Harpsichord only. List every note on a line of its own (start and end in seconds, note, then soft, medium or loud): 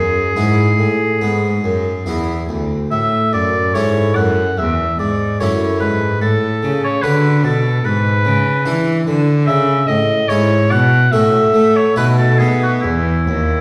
0.00 0.32 F#2 medium
0.36 0.75 G#2 medium
0.36 0.67 B3 soft
0.36 0.98 E4 soft
0.79 1.17 A2 medium
1.21 1.60 G#2 medium
1.21 1.64 B3 soft
1.64 2.03 F#2 soft
2.06 2.45 E2 medium
2.06 2.37 B3 soft
2.06 2.68 E4 soft
2.49 2.88 D2 medium
2.92 3.30 A2 medium
3.33 3.71 F#2 medium
3.75 4.12 G#2 medium
3.75 4.34 A3 soft
3.75 4.35 C#4 soft
3.75 4.35 E4 medium
4.16 4.54 F#2 medium
4.58 4.95 E2 medium
4.99 5.36 G#2 medium
5.40 5.77 F#2 medium
5.40 5.99 A3 medium
5.40 5.99 C#4 soft
5.40 6.00 E4 soft
5.81 6.18 G#2 medium
6.22 6.59 A2 medium
6.63 7.00 C#3 medium
7.03 7.41 D3 medium
7.03 7.62 D4 soft
7.03 7.62 F#4 medium
7.44 7.81 B2 medium
7.84 8.21 G#2 medium
8.25 8.62 C#3 medium
8.66 9.03 E3 medium
8.66 9.24 D4 medium
8.66 9.25 E4 medium
9.07 9.44 D3 medium
9.48 9.84 C#3 medium
9.88 10.25 A2 medium
10.30 10.67 G#2 medium
10.30 10.89 C#4 medium
10.30 10.90 E4 medium
10.71 11.09 B2 medium
11.13 11.50 A2 medium
11.13 11.53 A3 soft
11.13 11.93 C#4 medium
11.13 11.93 F#4 medium
11.54 11.92 A3 medium
11.96 12.35 B2 medium
11.96 12.79 A3 soft
11.96 12.79 D#4 medium
11.96 12.80 F#4 soft
12.40 12.79 B3 medium
12.83 13.23 E2 medium
13.28 13.61 D#2 medium